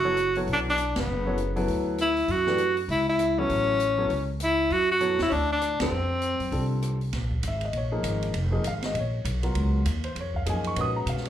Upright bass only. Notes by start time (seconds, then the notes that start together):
Already playing: F#1
0.47 B1
0.95 F1
1.07 F#1
1.68 D2
2.28 F#2
2.88 C#2
3.50 A1
4.10 C#2
4.70 F#2
5.20 E2
5.31 D2
5.80 D2
5.91 F2
6.40 F#2
6.52 C2
7.13 A#1
7.43 G#1
7.73 A#1
8.03 G#1
8.34 F1
8.64 G#1
8.94 A#1
9.25 B1
9.55 C#2
9.85 D#2
10.15 F2
10.46 F#2
10.76 A#2
11.06 B2